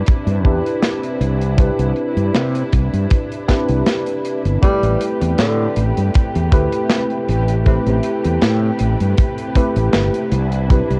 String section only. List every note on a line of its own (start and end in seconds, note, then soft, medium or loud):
0.00 4.59 C3 medium
0.00 4.59 D4 medium
0.00 4.59 E4 medium
0.00 4.59 B4 medium
4.63 11.00 C3 medium
4.63 10.29 A3 medium
4.63 10.29 G4 medium
4.63 11.00 B4 medium
10.32 11.00 D4 medium
10.32 11.00 E4 medium